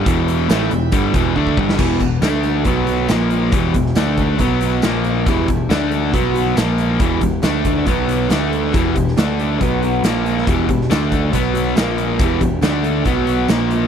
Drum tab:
CC |----------------|x---------------|----------------|----------------|
HH |x-x-x-x-x-x-----|--x-x-x-x-x-x-x-|x-x-x-x-x-x-x-x-|x-x-x-x-x-x-x-x-|
TB |----x-----------|----x-------x---|----x-------x---|----x-------x---|
SD |----oo---------o|----o-------o---|---oo-------o---|----o-------o---|
BD |o-------o-o-ooo-|o-o-----o-------|o-o---o-o-------|o-o-----o-------|

CC |----------------|----------------|----------------|----------------|
HH |x-x-x-x-x-x-x-x-|x-x-x-x-x-x-x-x-|x-x-x-x-x-x-x-x-|x-x-x-x-x-x-x-x-|
TB |----x-------x---|----x-------x---|----x-------x---|----x-------x---|
SD |----o-------o---|---oo-------o--o|---oo-------o---|----o-------o---|
BD |o-o---o-o-------|o-o-----o-------|o-o---o-o-------|o-o-----o-------|